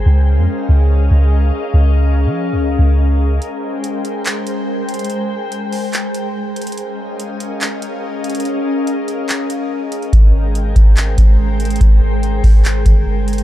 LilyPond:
<<
  \new Staff \with { instrumentName = "Ambient pad" } { \time 4/4 \key aes \major \tempo 4 = 143 << { <des' ees'' f''>1~ | <des' ees'' f''>1 | <aes c'' g''>1~ | <aes c'' g''>1 |
<des' ees'' f''>1~ | <des' ees'' f''>1 | <aes c'' g''>1~ | <aes c'' g''>1 | } \\ { <aes' bes'>1~ | <aes' bes'>1~ | <aes' bes'>1~ | <aes' bes'>1 |
<aes' bes'>1~ | <aes' bes'>1 | <aes' bes'>1~ | <aes' bes'>1 | } >> }
  \new Staff \with { instrumentName = "808-style bass" } { \clef bass \time 4/4 \key aes \major des,8. f,16 r8 des,4 des,4 r8 | des,4~ des,16 f8~ f32 des,8~ des,32 des,4. | r1 | r1 |
r1 | r1 | aes,,4. aes,,4 aes,,4. | aes,,4. aes,,4 g,,4. | }
  \new DrumStaff \with { instrumentName = "Drums" } \drummode { \time 4/4 r4 r4 r4 r4 | r4 r4 r4 r4 | hh4 hh8 hh8 <hc hh>8 hh8 r8 hh32 hh32 hh32 hh32 | hh4 hh8 hho8 <hc hh>8 hh8 r8 hh32 hh32 hh32 hh32 |
hh4 hh8 hh8 <hc hh>8 hh8 r8 hh32 hh32 hh32 hh32 | hh4 hh8 hh8 <hc hh>8 hh8 r8 hh16 hh16 | <hh bd>4 hh8 <hh bd>8 <hc hh>8 <hh bd>8 r8 hh32 hh32 hh32 hh32 | <hh bd>4 hh8 <hho bd>8 <hc hh>8 <hh bd>8 r8 hh32 hh32 hh16 | }
>>